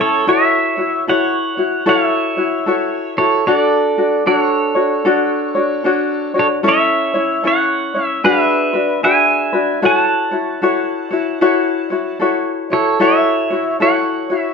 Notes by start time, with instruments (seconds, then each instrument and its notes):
Already playing: ukulele A4
0.00 ukulele C#4 E4, pedal steel guitar A4 C#5
0.27 ukulele E4 F#4 A4 C#5, pedal steel guitar C#5 E5
0.77 ukulele E4 F#4 C#5
1.07 ukulele E4 F#4 A4 C#5, pedal steel guitar C#5 F#5
1.57 ukulele E4 F#4 C#5
1.86 ukulele E4 F#4 A4 C#5, pedal steel guitar C#5 F5
2.06 pedal steel guitar E5
2.37 ukulele E4 F#4 C#5
2.66 ukulele E4 F#4 A4 C#5
3.17 ukulele E4 F#4 C#5, pedal steel guitar A4 C#5
3.47 ukulele D4 F#4 A4, pedal steel guitar A4 C#5
3.58 pedal steel guitar D5
3.98 ukulele D4 F#4
4.26 ukulele D4 F#4 A4 C#5, pedal steel guitar A4 D5
4.38 pedal steel guitar C#5
4.75 ukulele D4 F#4 C#5
5.05 ukulele D4 F#4 A4 C#5
5.55 ukulele D4 F#4 C#5
5.84 ukulele D4 F#4 A4 C#5
6.34 ukulele D4 F#4 C#5
6.39 pedal steel guitar A4 C#5
6.63 ukulele C#4 E4 A4 C#5
6.68 pedal steel guitar C#5 E5
7.14 ukulele C#4 E4 C#5
7.43 ukulele C#4 E4 A4 C#5, pedal steel guitar C#5
7.48 pedal steel guitar F#5
7.94 ukulele C#4 E4 C#5
8.06 pedal steel guitar E5
8.24 ukulele D4 F#4 G#4 B4, pedal steel guitar B4 E5
8.73 ukulele D4 F#4 B4
9.03 ukulele D4 F#4 G#4 B4, pedal steel guitar E5 G#5
9.53 ukulele D4 F#4 B4
9.82 ukulele E4 F#4 A4 C#5, pedal steel guitar F#5 A5
10.31 ukulele E4 F#4 C#5
10.62 ukulele E4 F#4 A4 C#5
11.11 ukulele E4 F#4 C#5
11.41 ukulele E4 F#4 A4 C#5
11.90 ukulele E4 F#4 C#5
12.20 ukulele E4 F#4 A4 C#5
12.70 ukulele E4 F#4 C#5, pedal steel guitar A4 C#5
13.00 ukulele E4 F#4 A4 C#5, pedal steel guitar C#5 E5
13.50 ukulele E4 F#4 C#5
13.80 ukulele E4 F#4 A4 C#5, pedal steel guitar C#5 F#5
14.30 ukulele E4 F#4 C#5
14.40 pedal steel guitar E5